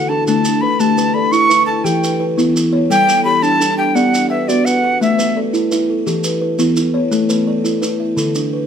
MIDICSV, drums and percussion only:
0, 0, Header, 1, 2, 480
1, 0, Start_track
1, 0, Tempo, 351083
1, 1091, Time_signature, 12, 3, 24, 8
1, 11850, End_track
2, 0, Start_track
2, 0, Title_t, "Drums"
2, 378, Note_on_c, 9, 70, 70
2, 514, Note_off_c, 9, 70, 0
2, 614, Note_on_c, 9, 70, 76
2, 751, Note_off_c, 9, 70, 0
2, 1095, Note_on_c, 9, 70, 64
2, 1232, Note_off_c, 9, 70, 0
2, 1338, Note_on_c, 9, 70, 76
2, 1475, Note_off_c, 9, 70, 0
2, 1819, Note_on_c, 9, 70, 58
2, 1956, Note_off_c, 9, 70, 0
2, 2063, Note_on_c, 9, 70, 76
2, 2199, Note_off_c, 9, 70, 0
2, 2544, Note_on_c, 9, 70, 59
2, 2681, Note_off_c, 9, 70, 0
2, 2788, Note_on_c, 9, 70, 69
2, 2924, Note_off_c, 9, 70, 0
2, 3267, Note_on_c, 9, 70, 65
2, 3404, Note_off_c, 9, 70, 0
2, 3507, Note_on_c, 9, 70, 73
2, 3644, Note_off_c, 9, 70, 0
2, 3986, Note_on_c, 9, 70, 61
2, 4123, Note_off_c, 9, 70, 0
2, 4225, Note_on_c, 9, 70, 73
2, 4362, Note_off_c, 9, 70, 0
2, 4700, Note_on_c, 9, 70, 54
2, 4837, Note_off_c, 9, 70, 0
2, 4942, Note_on_c, 9, 70, 73
2, 5079, Note_off_c, 9, 70, 0
2, 5418, Note_on_c, 9, 70, 54
2, 5555, Note_off_c, 9, 70, 0
2, 5664, Note_on_c, 9, 70, 72
2, 5801, Note_off_c, 9, 70, 0
2, 6144, Note_on_c, 9, 70, 57
2, 6281, Note_off_c, 9, 70, 0
2, 6382, Note_on_c, 9, 70, 64
2, 6519, Note_off_c, 9, 70, 0
2, 6870, Note_on_c, 9, 70, 47
2, 7006, Note_off_c, 9, 70, 0
2, 7101, Note_on_c, 9, 70, 63
2, 7238, Note_off_c, 9, 70, 0
2, 7576, Note_on_c, 9, 70, 48
2, 7713, Note_off_c, 9, 70, 0
2, 7817, Note_on_c, 9, 70, 65
2, 7954, Note_off_c, 9, 70, 0
2, 8301, Note_on_c, 9, 70, 55
2, 8438, Note_off_c, 9, 70, 0
2, 8530, Note_on_c, 9, 70, 70
2, 8666, Note_off_c, 9, 70, 0
2, 9011, Note_on_c, 9, 70, 60
2, 9148, Note_off_c, 9, 70, 0
2, 9250, Note_on_c, 9, 70, 65
2, 9387, Note_off_c, 9, 70, 0
2, 9734, Note_on_c, 9, 70, 57
2, 9871, Note_off_c, 9, 70, 0
2, 9977, Note_on_c, 9, 70, 72
2, 10114, Note_off_c, 9, 70, 0
2, 10462, Note_on_c, 9, 70, 60
2, 10599, Note_off_c, 9, 70, 0
2, 10703, Note_on_c, 9, 70, 74
2, 10839, Note_off_c, 9, 70, 0
2, 11182, Note_on_c, 9, 70, 58
2, 11319, Note_off_c, 9, 70, 0
2, 11417, Note_on_c, 9, 70, 78
2, 11554, Note_off_c, 9, 70, 0
2, 11850, End_track
0, 0, End_of_file